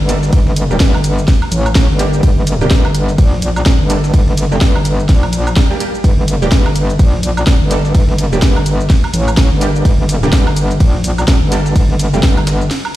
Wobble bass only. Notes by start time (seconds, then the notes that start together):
0.00 G1
0.33 G1
0.80 G1
1.52 A1
1.90 G1
2.23 G1
2.71 G1
3.18 A#1
3.42 A#1
3.80 G1
4.14 G1
4.61 G1
5.09 A#1
6.04 G1
6.52 G1
6.99 A#1
7.23 A#1
7.61 G1
7.95 G1
8.42 G1
9.14 A1
9.52 G1
9.85 G1
10.33 G1
10.80 A#1
11.04 A#1
11.42 G1
11.76 G1
12.23 G1